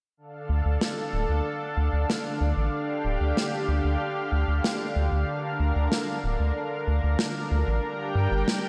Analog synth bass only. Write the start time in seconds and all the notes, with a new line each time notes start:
0.49 D2
0.65 D2
1.13 D1
1.29 D2
1.77 D2
1.93 D2
2.41 D2
2.57 A1
3.05 D1
3.20 D2
3.68 D2
3.84 D2
4.32 D2
4.48 D2
4.96 D2
5.12 D2
5.60 D2
5.76 D2
6.24 D1
6.40 D2
6.87 D2
7.03 D2
7.51 D2
7.67 A1
8.15 G2
8.31 G1